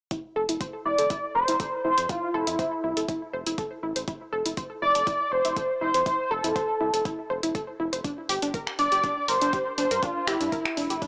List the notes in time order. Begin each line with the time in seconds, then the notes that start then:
0.11 E4, kick, closed hi-hat
0.36 F1 A4
0.49 F1 E4, closed hi-hat
0.61 C5, kick, closed hi-hat
0.85 F1 E4 D5
0.98 F1 A4, closed hi-hat
1.10 E4, kick, closed hi-hat
1.35 F1 C5
1.48 F1 E4, closed hi-hat
1.60 A4, kick, closed hi-hat
1.84 F1 E4 C5
1.98 F2 C5, closed hi-hat
2.09 E4 F4, kick, closed hi-hat
2.34 F1 E4 A4
2.47 F2 E4, closed hi-hat
2.59 C5, kick, closed hi-hat
2.84 C2 E4
2.97 F1 A4, closed hi-hat
3.08 E4, kick, closed hi-hat
3.33 F1 C5
3.46 F1 E4, closed hi-hat
3.58 A4, kick, closed hi-hat
3.83 A1 E4
3.96 A1 C5, closed hi-hat
4.08 E4, kick, closed hi-hat
4.32 F1 A4
4.45 F1 E4, closed hi-hat
4.57 C5, kick, closed hi-hat
4.82 F1 E4 D5
4.95 F1 A4, closed hi-hat
5.07 E4, kick, closed hi-hat
5.31 F1 C5
5.45 F1 E4, closed hi-hat
5.56 A4, kick, closed hi-hat
5.81 F1 E4 C5
5.94 F2 C5, closed hi-hat
6.06 E4 C5, kick, closed hi-hat
6.31 F1 A4
6.44 F2 E4, closed hi-hat
6.56 C5, kick, closed hi-hat
6.80 C2 E4
6.93 F1 A4, closed hi-hat
7.05 E4, kick, closed hi-hat
7.30 F1 C5
7.43 F1 E4, closed hi-hat
7.55 A4, kick, closed hi-hat
7.80 F1 E4
7.93 F1 C5, closed hi-hat
8.04 D4, kick, closed hi-hat
8.29 G1 G4, open hi-hat
8.42 G1 D4, closed hi-hat
8.54 A#4, kick, closed hi-hat
8.67 finger snap
8.79 G1 D4 D5, open hi-hat
8.92 G1 G4, closed hi-hat
9.04 D4, kick, closed hi-hat
9.28 G1 A#4 C5, open hi-hat
9.41 G1 D4, closed hi-hat
9.53 G4, kick, closed hi-hat
9.78 G1 D4 C5, open hi-hat
9.91 G2 A#4, closed hi-hat
10.03 D4 F4, kick, closed hi-hat
10.27 G1 E4 G4, finger snap, open hi-hat
10.40 G2 D4, closed hi-hat
10.52 A#4, kick, closed hi-hat
10.65 finger snap
10.77 F1 D4, open hi-hat
10.90 G1 G4, closed hi-hat
11.02 D4, kick, closed hi-hat